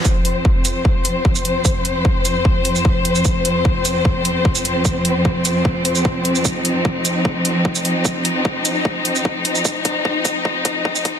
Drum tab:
HH |--x---x---x---x-|--x---x---x---x-|--x---x---x---x-|--x---x---x---x-|
SH |x-----x------x--|x-----x----x---x|x-----x------x--|x-----x----x---x|
BD |o---o---o---o---|o---o---o---o---|o---o---o---o---|o---o---o---o---|

HH |--x---x---x---x-|--x---x---x---x-|--x---x---x---x-|
SH |x-----x------x--|x-----x----x---x|x-----x------x--|
BD |o---o---o---o---|o---o---o---o---|o-o-o-o-o-o-o-o-|